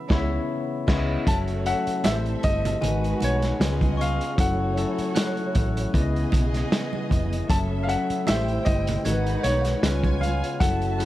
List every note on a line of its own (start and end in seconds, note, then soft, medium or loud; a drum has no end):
0.00 1.25 C#3 medium
0.00 1.25 E3 medium
0.00 1.25 B3 medium
0.00 1.26 E4 medium
0.00 0.84 E5 medium
0.09 0.37 C#2 loud
0.09 0.37 C#3 loud
0.09 0.37 G#3 loud
0.09 0.37 B3 loud
0.09 0.37 E4 loud
0.09 0.38 E4 loud
0.09 0.37 C#5 loud
0.09 0.38 C#5 loud
0.09 kick loud
0.09 snare loud
0.18 0.42 E5 loud
0.87 1.15 C#2 loud
0.87 1.14 C#3 loud
0.87 1.15 G#3 medium
0.87 1.15 B3 loud
0.87 1.15 E4 medium
0.87 1.15 E4 loud
0.87 1.15 C#5 medium
0.87 1.16 C#5 medium
0.87 kick loud
0.87 snare loud
0.87 crash medium
0.96 1.19 D#5 loud
1.26 1.72 F#1 loud
1.26 2.04 C#3 medium
1.26 1.63 F#3 medium
1.26 2.04 F#3 medium
1.26 2.03 A3 medium
1.26 2.81 A3 medium
1.26 1.63 C#4 medium
1.26 2.81 E4 medium
1.26 2.03 F#4 medium
1.26 1.63 A4 medium
1.26 2.03 C#5 medium
1.26 1.64 E5 medium
1.26 1.36 A5 loud
1.26 kick loud
1.26 closed hi-hat loud
1.26 muted conga medium
1.48 closed hi-hat soft
1.65 2.04 F#3 medium
1.65 2.05 C#4 medium
1.65 2.05 A4 medium
1.65 2.05 E5 medium
1.65 2.06 F#5 loud
1.65 2.40 A5 medium
1.65 closed hi-hat medium
1.87 muted fingered electric bass stroke medium
1.87 closed hi-hat medium
2.04 2.34 A1 medium
2.04 2.81 C3 medium
2.04 2.81 G3 medium
2.04 2.77 A3 medium
2.04 2.81 C4 medium
2.04 2.77 E4 medium
2.04 2.77 G4 medium
2.04 2.81 A4 medium
2.04 2.12 B4 medium
2.04 2.13 E5 loud
2.04 2.81 E5 medium
2.04 snare loud
2.04 closed hi-hat loud
2.04 high conga medium
2.12 2.81 C5 medium
2.26 closed hi-hat soft
2.43 2.73 G1 loud
2.43 3.18 D#5 loud
2.43 kick loud
2.43 closed hi-hat medium
2.65 closed hi-hat medium
2.65 low conga medium
2.81 3.12 G#1 loud
2.81 3.59 D#3 medium
2.81 3.59 G#3 medium
2.81 3.54 G#3 medium
2.81 3.59 G#3 medium
2.81 4.36 B3 medium
2.81 3.55 D#4 medium
2.81 3.59 F#4 medium
2.81 3.55 F#4 medium
2.81 3.59 F#4 medium
2.81 3.59 B4 medium
2.81 3.55 B4 medium
2.81 3.95 G#5 medium
2.81 closed hi-hat medium
2.81 low conga medium
3.04 closed hi-hat soft
3.20 3.51 B1 medium
3.20 4.03 C#5 medium
3.20 closed hi-hat medium
3.20 muted conga medium
3.42 snare soft
3.42 closed hi-hat medium
3.59 4.19 C#2 loud
3.59 4.32 C#3 medium
3.59 4.37 C#3 medium
3.59 4.37 G#3 medium
3.59 4.37 B3 medium
3.59 4.32 C#4 medium
3.59 4.37 F4 medium
3.59 4.33 F4 medium
3.59 4.36 G#4 medium
3.59 4.33 B4 medium
3.59 4.36 D#5 medium
3.59 snare loud
3.59 closed hi-hat loud
3.59 high conga medium
3.81 kick medium
3.81 closed hi-hat soft
3.81 high conga medium
3.97 4.40 F5 medium
3.97 4.72 C#6 medium
3.97 closed hi-hat medium
3.97 high conga medium
4.21 closed hi-hat medium
4.37 4.83 F#1 loud
4.37 8.23 C#3 medium
4.37 4.74 F#3 medium
4.37 5.92 F#3 medium
4.37 5.90 A3 medium
4.37 5.92 A3 medium
4.37 4.74 C#4 medium
4.37 5.92 E4 medium
4.37 4.75 E4 medium
4.37 5.90 F#4 medium
4.37 4.75 A4 medium
4.37 5.90 C#5 loud
4.37 5.91 F#5 medium
4.37 kick loud
4.37 closed hi-hat loud
4.37 muted conga medium
4.76 5.93 F#3 medium
4.76 5.94 C#4 medium
4.76 5.93 E4 medium
4.76 5.94 A4 medium
4.76 closed hi-hat medium
4.98 muted fingered electric bass stroke medium
4.98 closed hi-hat medium
5.15 6.28 F#6 medium
5.15 snare loud
5.15 closed hi-hat loud
5.15 high conga medium
5.37 closed hi-hat soft
5.55 5.85 A1 loud
5.55 kick loud
5.55 closed hi-hat medium
5.77 closed hi-hat medium
5.93 6.23 C#2 loud
5.93 7.39 C#3 medium
5.93 7.48 E3 medium
5.93 7.46 B3 medium
5.93 7.39 B3 medium
5.93 7.48 B3 medium
5.93 7.39 E4 medium
5.93 7.46 G#4 medium
5.93 6.01 D5 medium
5.93 7.46 D#5 loud
5.93 7.48 D#5 medium
5.93 kick medium
5.93 closed hi-hat medium
5.93 muted conga soft
6.02 7.43 D#5 loud
6.16 closed hi-hat soft
6.32 6.62 B1 loud
6.32 7.56 D#6 medium
6.32 kick medium
6.32 closed hi-hat loud
6.32 muted conga medium
6.32 low conga medium
6.54 snare soft
6.54 closed hi-hat medium
6.72 snare loud
6.72 closed hi-hat loud
6.72 high conga medium
6.93 high conga medium
7.09 7.40 F1 loud
7.09 kick medium
7.09 closed hi-hat medium
7.09 high conga medium
7.33 closed hi-hat medium
7.49 7.95 F#1 loud
7.49 7.85 F#3 medium
7.49 8.27 F#3 medium
7.49 9.04 A3 medium
7.49 8.25 C#4 medium
7.49 7.86 C#4 medium
7.49 9.04 E4 medium
7.49 8.25 A4 medium
7.49 7.86 A4 medium
7.49 8.25 E5 medium
7.49 7.86 E5 medium
7.49 7.57 A5 loud
7.49 kick loud
7.49 closed hi-hat loud
7.49 muted conga medium
7.83 8.26 F#3 medium
7.83 7.89 F5 medium
7.88 8.27 C#4 medium
7.88 8.27 A4 medium
7.88 8.27 E5 medium
7.88 8.25 F#5 medium
7.88 closed hi-hat medium
8.10 muted fingered electric bass stroke soft
8.10 closed hi-hat soft
8.26 8.57 A1 loud
8.26 9.04 C3 medium
8.26 9.04 G3 medium
8.26 8.99 A3 medium
8.26 8.99 E4 medium
8.26 9.03 E4 medium
8.26 8.99 G4 medium
8.26 8.34 B4 medium
8.26 9.03 C5 medium
8.26 8.67 E5 loud
8.26 9.03 G5 medium
8.26 snare loud
8.26 closed hi-hat loud
8.26 high conga medium
8.34 9.03 C5 medium
8.48 closed hi-hat soft
8.65 8.96 G1 loud
8.65 9.46 D#5 medium
8.65 kick loud
8.65 closed hi-hat medium
8.87 closed hi-hat medium
8.87 low conga medium
9.04 9.35 G#1 loud
9.04 9.82 D#3 medium
9.04 9.77 G#3 medium
9.04 9.82 G#3 medium
9.04 10.59 B3 medium
9.04 9.77 D#4 medium
9.04 9.81 D#4 medium
9.04 9.82 F#4 medium
9.04 9.78 F#4 medium
9.04 9.12 A4 medium
9.04 9.81 B4 medium
9.04 9.81 F#5 medium
9.04 10.17 G#6 medium
9.04 closed hi-hat medium
9.04 low conga medium
9.13 9.81 B4 medium
9.26 closed hi-hat soft
9.43 9.73 B1 medium
9.43 10.24 C#5 loud
9.43 closed hi-hat medium
9.43 muted conga medium
9.65 snare soft
9.65 closed hi-hat medium
9.82 10.41 C#2 loud
9.82 10.55 C#3 medium
9.82 11.05 C#3 medium
9.82 10.60 G#3 medium
9.82 10.55 C#4 medium
9.82 9.90 D#4 medium
9.82 10.59 F4 medium
9.82 10.60 F4 medium
9.82 10.56 B4 medium
9.82 10.59 C#5 medium
9.82 10.59 G#5 loud
9.82 snare loud
9.82 closed hi-hat loud
9.82 high conga medium
9.90 10.59 F4 medium
10.04 kick medium
10.04 closed hi-hat soft
10.04 high conga medium
10.21 10.61 F5 medium
10.21 closed hi-hat medium
10.21 high conga medium
10.44 closed hi-hat medium
10.60 11.05 F#1 loud
10.60 10.97 F#3 medium
10.60 11.05 F#3 medium
10.60 11.05 A3 medium
10.60 10.97 C#4 medium
10.60 11.05 E4 medium
10.60 10.97 E4 medium
10.60 11.05 F#4 medium
10.60 10.97 A4 medium
10.60 11.05 E5 medium
10.60 11.05 F#5 medium
10.60 11.05 A5 loud
10.60 kick loud
10.60 closed hi-hat loud
10.60 muted conga medium
10.82 closed hi-hat soft
10.99 11.05 F#3 medium
10.99 11.05 C#4 medium
10.99 11.05 E4 medium
10.99 11.05 G#4 medium
10.99 11.05 F#6 medium
10.99 closed hi-hat medium